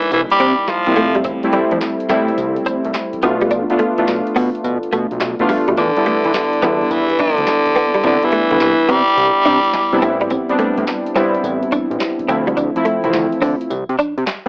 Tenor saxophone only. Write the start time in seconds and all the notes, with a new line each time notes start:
Already playing: E3
0.13 E3
0.31 G3
0.69 F3
5.79 D3
6.64 D3
6.92 E3
7.20 D3
8.06 D3
8.25 E3
8.91 G3